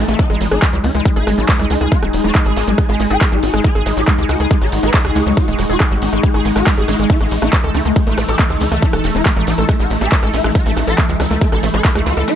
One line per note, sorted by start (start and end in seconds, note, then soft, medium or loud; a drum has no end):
0.00 0.19 E3 medium
0.00 0.18 G#3 medium
0.00 0.18 D#4 medium
0.00 0.19 A5 medium
0.00 0.19 E6 medium
0.00 noise sweep medium
0.08 0.15 A1 medium
0.08 0.15 A3 medium
0.08 0.14 A3 loud
0.08 closed hi-hat soft
0.19 12.35 G#3 medium
0.19 0.26 D#4 loud
0.19 12.35 D#4 medium
0.19 7.10 D#4 medium
0.19 kick loud
0.19 closed hi-hat medium
0.30 0.37 G#1 medium
0.30 0.36 G#3 medium
0.30 0.36 G#3 loud
0.30 7.10 G#4 medium
0.30 cross-stick soft
0.30 closed hi-hat soft
0.41 0.48 G#1 loud
0.41 0.47 G#3 medium
0.41 open hi-hat loud
0.51 0.58 G#1 medium
0.51 0.58 D#4 loud
0.51 0.56 G#4 loud
0.51 cross-stick medium
0.51 closed hi-hat soft
0.62 0.69 G#3 medium
0.62 0.66 G#3 medium
0.62 kick loud
0.62 clap loud
0.62 closed hi-hat medium
0.67 4.22 G#5 medium
0.73 0.80 C#2 medium
0.73 0.76 F#3 medium
0.73 0.80 G#3 medium
0.73 closed hi-hat soft
0.84 0.91 C#2 loud
0.84 0.90 C#4 medium
0.84 cross-stick soft
0.84 open hi-hat loud
0.95 1.02 C#2 medium
0.95 1.01 G#3 medium
0.95 1.01 G#3 loud
0.95 closed hi-hat soft
1.05 1.12 G#3 medium
1.05 kick loud
1.05 cross-stick soft
1.05 closed hi-hat medium
1.16 1.23 G#1 medium
1.16 1.23 E4 medium
1.16 1.20 G#4 loud
1.16 closed hi-hat soft
1.27 1.34 G#1 loud
1.27 1.34 G#3 medium
1.27 1.31 G#3 medium
1.27 cross-stick medium
1.27 open hi-hat loud
1.38 1.45 G#1 loud
1.38 1.40 F#3 medium
1.38 1.44 F#4 loud
1.38 closed hi-hat soft
1.46 1.55 G#3 medium
1.46 4.41 D#6 medium
1.46 kick loud
1.46 clap loud
1.46 closed hi-hat medium
1.59 1.66 C#2 medium
1.59 1.66 G#3 medium
1.59 1.65 G#3 loud
1.59 cross-stick soft
1.59 closed hi-hat soft
1.70 1.77 C#2 loud
1.70 1.76 G#3 medium
1.70 1.77 D#4 loud
1.70 open hi-hat loud
1.81 1.88 C#2 medium
1.81 1.88 G#3 medium
1.81 1.85 G#4 loud
1.81 cross-stick soft
1.81 closed hi-hat soft
1.92 1.96 G#3 medium
1.92 1.98 F#4 loud
1.92 kick loud
1.92 closed hi-hat medium
2.03 2.10 D#1 medium
2.03 2.05 F#3 medium
2.03 2.09 G#3 medium
2.03 cross-stick medium
2.03 closed hi-hat soft
2.13 2.20 D#1 loud
2.13 2.20 G#3 medium
2.13 open hi-hat loud
2.24 2.31 D#1 medium
2.24 2.30 G#3 loud
2.24 2.31 F#4 loud
2.24 closed hi-hat soft
2.35 2.41 G#3 medium
2.35 kick loud
2.35 cross-stick soft
2.35 clap loud
2.35 closed hi-hat medium
2.46 2.53 G#1 medium
2.46 2.52 G#3 medium
2.46 2.50 G#4 loud
2.46 closed hi-hat soft
2.56 2.63 G#1 loud
2.56 2.61 G#3 medium
2.56 2.63 D#4 loud
2.56 open hi-hat loud
2.67 2.74 G#1 medium
2.67 2.70 F#3 medium
2.67 2.74 G#3 medium
2.67 closed hi-hat soft
2.78 2.85 G#3 medium
2.78 kick loud
2.78 cross-stick medium
2.78 closed hi-hat medium
2.89 2.96 G#1 medium
2.89 2.95 G#3 loud
2.89 2.95 G#4 medium
2.89 closed hi-hat soft
3.00 3.07 G#1 medium
3.00 3.06 G#3 medium
3.00 open hi-hat loud
3.10 3.17 G#1 loud
3.10 3.15 G#4 loud
3.10 3.17 G#4 loud
3.10 cross-stick soft
3.10 closed hi-hat soft
3.21 3.25 G#3 medium
3.21 3.28 G#3 medium
3.21 kick loud
3.21 clap loud
3.21 closed hi-hat medium
3.32 3.39 G#1 medium
3.32 3.34 F#3 medium
3.32 3.39 G#3 medium
3.32 cross-stick soft
3.32 closed hi-hat soft
3.43 3.50 G#1 loud
3.43 3.49 F#4 medium
3.43 open hi-hat loud
3.54 3.61 G#1 medium
3.54 3.60 G#3 loud
3.54 3.60 G#3 medium
3.54 cross-stick medium
3.54 closed hi-hat soft
3.64 3.70 G#3 medium
3.64 3.71 G#4 loud
3.64 kick loud
3.64 closed hi-hat medium
3.75 3.82 G#1 medium
3.75 3.82 G#3 medium
3.75 3.79 G#4 loud
3.75 closed hi-hat soft
3.86 3.93 G#1 loud
3.86 3.90 G#3 medium
3.86 3.93 G#3 medium
3.86 cross-stick soft
3.86 open hi-hat loud
3.97 4.04 G#1 medium
3.97 3.99 F#3 medium
3.97 4.03 G#4 loud
3.97 closed hi-hat soft
4.08 4.14 G#3 medium
4.08 8.29 F#5 medium
4.08 kick loud
4.08 cross-stick soft
4.08 clap loud
4.08 closed hi-hat medium
4.18 4.25 C#2 medium
4.18 4.24 G#3 loud
4.18 4.25 G#3 medium
4.18 closed hi-hat soft
4.28 4.36 C#2 loud
4.28 4.35 G#3 medium
4.28 4.36 F#4 medium
4.28 8.70 C#6 medium
4.28 cross-stick medium
4.28 open hi-hat loud
4.40 4.47 C#2 medium
4.40 4.47 G#3 medium
4.40 4.44 G#4 loud
4.40 closed hi-hat soft
4.51 4.55 G#3 medium
4.51 4.57 G#3 medium
4.51 kick loud
4.51 closed hi-hat medium
4.62 4.69 G#1 medium
4.62 4.64 F#3 medium
4.62 4.68 A4 medium
4.62 cross-stick soft
4.62 closed hi-hat soft
4.72 4.79 G#1 loud
4.72 4.79 G#3 medium
4.72 open hi-hat loud
4.83 4.90 G#1 loud
4.83 4.89 G#3 loud
4.83 4.90 B4 loud
4.83 cross-stick soft
4.83 closed hi-hat soft
4.94 5.00 G#3 medium
4.94 kick loud
4.94 clap loud
4.94 closed hi-hat medium
5.05 5.12 C#2 medium
5.05 5.11 G#3 medium
5.05 5.09 G#4 loud
5.05 cross-stick medium
5.05 closed hi-hat soft
5.16 5.22 C#2 loud
5.16 5.20 G#3 medium
5.16 5.22 G#4 loud
5.16 open hi-hat loud
5.26 5.33 C#2 loud
5.26 5.29 F#3 medium
5.26 5.33 G#3 medium
5.26 closed hi-hat soft
5.37 5.44 F#4 loud
5.37 kick loud
5.37 cross-stick soft
5.37 closed hi-hat medium
5.48 5.55 D#1 medium
5.48 5.54 G#3 loud
5.48 5.54 G#3 medium
5.48 closed hi-hat soft
5.59 5.66 D#1 loud
5.59 5.65 G#3 medium
5.59 cross-stick soft
5.59 open hi-hat loud
5.69 5.76 D#1 medium
5.69 5.76 F#4 medium
5.69 5.74 G#4 loud
5.69 closed hi-hat soft
5.80 5.84 G#3 medium
5.80 5.87 G#3 medium
5.80 kick loud
5.80 cross-stick medium
5.80 clap loud
5.80 closed hi-hat medium
5.91 5.98 G#1 medium
5.91 5.93 F#3 medium
5.91 5.98 G#3 medium
5.91 closed hi-hat soft
6.02 6.09 G#1 loud
6.02 6.08 D#4 loud
6.02 open hi-hat loud
6.13 6.20 G#1 medium
6.13 6.19 G#3 loud
6.13 6.19 G#3 medium
6.13 cross-stick soft
6.13 closed hi-hat soft
6.23 6.29 G#3 medium
6.23 6.30 G#3 medium
6.23 kick loud
6.23 closed hi-hat medium
6.34 6.41 G#1 medium
6.34 6.41 G#4 medium
6.34 6.38 G#4 loud
6.34 cross-stick soft
6.34 closed hi-hat soft
6.45 6.52 G#1 loud
6.45 6.52 G#3 medium
6.45 6.47 G#3 medium
6.45 open hi-hat loud
6.56 6.63 G#1 loud
6.56 6.62 G#3 medium
6.56 6.62 F#4 loud
6.56 cross-stick medium
6.56 closed hi-hat soft
6.67 6.73 G#3 medium
6.67 kick loud
6.67 clap loud
6.67 closed hi-hat medium
6.77 6.84 G#1 medium
6.77 6.84 G#3 medium
6.77 6.83 G#4 loud
6.77 closed hi-hat soft
6.88 6.95 G#1 loud
6.88 6.94 G#3 loud
6.88 6.95 E4 loud
6.88 cross-stick soft
6.88 open hi-hat loud
6.99 7.06 G#1 medium
6.99 7.03 G#3 loud
6.99 7.06 G#3 medium
6.99 closed hi-hat soft
7.10 12.35 E3 medium
7.10 7.14 A3 medium
7.10 7.16 E4 loud
7.10 kick loud
7.10 closed hi-hat medium
7.21 7.28 A1 medium
7.21 7.23 G#3 medium
7.21 7.27 A3 medium
7.21 cross-stick soft
7.21 closed hi-hat soft
7.28 7.38 A1 loud
7.28 7.38 A3 medium
7.28 12.35 E6 medium
7.28 open hi-hat loud
7.42 7.49 A1 medium
7.42 7.48 A3 loud
7.42 7.49 E4 medium
7.42 cross-stick medium
7.42 closed hi-hat soft
7.53 7.59 A3 medium
7.53 10.97 A5 medium
7.53 kick loud
7.53 clap loud
7.53 closed hi-hat medium
7.64 7.71 C#2 medium
7.64 7.70 A3 medium
7.64 7.68 A4 loud
7.64 closed hi-hat soft
7.74 7.82 C#2 loud
7.74 7.79 A3 medium
7.74 7.81 E4 medium
7.74 cross-stick soft
7.74 open hi-hat loud
7.85 7.92 C#2 medium
7.85 7.88 G#3 medium
7.85 7.92 A3 medium
7.85 closed hi-hat soft
7.96 8.03 A3 medium
7.96 kick loud
7.96 cross-stick soft
7.96 closed hi-hat medium
8.07 8.14 A1 medium
8.07 8.13 A3 loud
8.07 8.13 F#4 medium
8.07 closed hi-hat soft
8.18 8.25 A1 loud
8.18 8.24 A3 medium
8.18 cross-stick medium
8.18 open hi-hat loud
8.28 8.35 A1 loud
8.28 8.35 G#4 loud
8.28 8.33 A4 loud
8.28 closed hi-hat soft
8.39 8.46 A3 medium
8.39 8.43 A3 medium
8.39 kick loud
8.39 clap loud
8.39 closed hi-hat medium
8.50 8.57 C#2 medium
8.50 8.52 G#3 medium
8.50 8.57 A3 medium
8.50 cross-stick soft
8.50 closed hi-hat soft
8.61 8.68 C#2 loud
8.61 8.67 E4 medium
8.61 open hi-hat loud
8.72 8.79 C#2 loud
8.72 8.78 A3 loud
8.72 8.78 A3 medium
8.72 cross-stick soft
8.72 closed hi-hat soft
8.82 8.88 A3 medium
8.82 8.89 E4 loud
8.82 kick loud
8.82 closed hi-hat medium
8.93 9.00 E1 medium
8.93 9.00 A3 medium
8.93 8.97 A4 loud
8.93 cross-stick medium
8.93 closed hi-hat soft
9.04 9.11 E1 loud
9.04 9.11 A3 medium
9.04 9.08 A3 medium
9.04 open hi-hat loud
9.15 9.22 E1 medium
9.15 9.17 G#3 medium
9.15 9.21 E4 medium
9.15 closed hi-hat soft
9.26 9.32 A3 medium
9.26 kick loud
9.26 cross-stick soft
9.26 clap loud
9.26 closed hi-hat medium
9.36 9.43 A1 medium
9.36 9.43 A3 medium
9.36 9.42 A3 loud
9.36 closed hi-hat soft
9.47 9.54 A1 loud
9.47 9.53 A3 medium
9.47 9.54 E4 loud
9.47 open hi-hat loud
9.58 9.65 A1 medium
9.58 9.65 A3 medium
9.58 9.62 A4 loud
9.58 closed hi-hat soft
9.69 9.75 A3 medium
9.69 9.73 A3 medium
9.69 kick loud
9.69 cross-stick medium
9.69 closed hi-hat medium
9.80 9.87 A1 medium
9.80 9.82 G#3 medium
9.80 9.86 F#4 medium
9.80 closed hi-hat soft
9.90 9.97 A1 loud
9.90 9.97 A3 medium
9.90 open hi-hat loud
10.01 10.08 A1 loud
10.01 10.07 A3 loud
10.01 10.08 G#4 loud
10.01 cross-stick soft
10.01 closed hi-hat soft
10.12 10.18 A3 medium
10.12 kick loud
10.12 clap loud
10.12 closed hi-hat medium
10.23 10.30 A1 medium
10.23 10.29 A3 medium
10.23 10.27 A4 loud
10.23 cross-stick soft
10.23 closed hi-hat soft
10.33 10.40 A1 medium
10.33 10.38 A3 medium
10.33 10.40 E4 medium
10.33 open hi-hat loud
10.44 10.51 A1 medium
10.44 10.47 G#3 medium
10.44 10.51 A3 medium
10.44 cross-stick medium
10.44 closed hi-hat soft
10.55 10.62 F#4 loud
10.55 kick loud
10.55 closed hi-hat medium
10.66 10.73 A1 medium
10.66 10.72 A3 medium
10.66 10.72 A3 loud
10.66 closed hi-hat soft
10.77 10.84 A1 loud
10.77 10.83 A3 medium
10.77 cross-stick soft
10.77 open hi-hat loud
10.84 10.94 A1 medium
10.84 10.94 F#4 loud
10.84 10.92 A4 loud
10.84 12.35 B5 medium
10.84 closed hi-hat soft
10.98 11.05 A3 medium
10.98 11.02 A3 medium
10.98 kick loud
10.98 cross-stick soft
10.98 clap loud
10.98 closed hi-hat medium
11.09 11.16 C#2 medium
11.09 11.11 G#3 medium
11.09 11.16 A3 medium
11.09 closed hi-hat soft
11.20 11.27 C#2 loud
11.20 11.26 E4 loud
11.20 cross-stick medium
11.20 open hi-hat loud
11.31 11.38 C#2 medium
11.31 11.37 A3 medium
11.31 11.37 A3 loud
11.31 closed hi-hat soft
11.41 11.48 A3 medium
11.41 11.47 A3 medium
11.41 kick loud
11.41 closed hi-hat medium
11.52 11.59 A1 medium
11.52 11.59 G#4 medium
11.52 11.56 A4 loud
11.52 cross-stick soft
11.52 closed hi-hat soft
11.63 11.70 A1 loud
11.63 11.70 A3 medium
11.63 11.67 A3 medium
11.63 open hi-hat loud
11.74 11.81 A1 loud
11.74 11.76 G#3 medium
11.74 11.80 A4 medium
11.74 cross-stick soft
11.74 closed hi-hat soft
11.85 11.91 A3 medium
11.85 kick loud
11.85 clap loud
11.85 closed hi-hat medium
11.95 12.02 C#2 medium
11.95 12.02 A3 medium
11.95 12.01 A3 loud
11.95 cross-stick medium
11.95 closed hi-hat soft
12.06 12.13 C#2 loud
12.06 12.12 A3 medium
12.06 12.13 F#4 medium
12.06 open hi-hat loud
12.17 12.24 C#2 medium
12.17 12.23 A3 medium
12.17 12.21 A4 loud
12.17 closed hi-hat soft
12.28 12.32 A3 medium
12.28 12.34 E4 loud
12.28 cross-stick soft
12.28 closed hi-hat medium